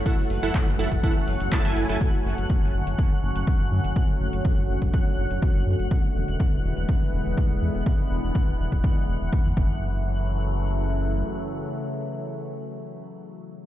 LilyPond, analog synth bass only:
\new Staff \with { instrumentName = "Analog synth bass" } { \clef bass \time 4/4 \key fis \minor \tempo 4 = 123 r8 fis,,16 fis,,16 r16 fis,,16 fis,,16 fis,,16 r8 fis,,16 fis,,16 r16 fis,,16 fis,,16 fis,,16 | r8 fis,,16 fis,,16 r16 fis,,16 fis,,16 fis,,16 r8 fis,,16 fis,,16 r16 fis,,16 fis,16 fis,,16 | r8 fis,,16 fis,,16 r16 fis,,16 fis,,16 fis,,16 r8 fis,,16 fis,,16 r16 fis,,16 fis,16 fis,,16 | r8 e,,16 e,,16 r16 e,,16 e,,16 e,,16 r8 e,,16 e,,16 r16 e,,16 e,16 e,,16 |
r8 e,,16 e,,16 r16 e,,16 e,,16 e,,16 r8 e,,16 e,,16 r16 e,16 fis,,8~ | fis,,2. r4 | r1 | }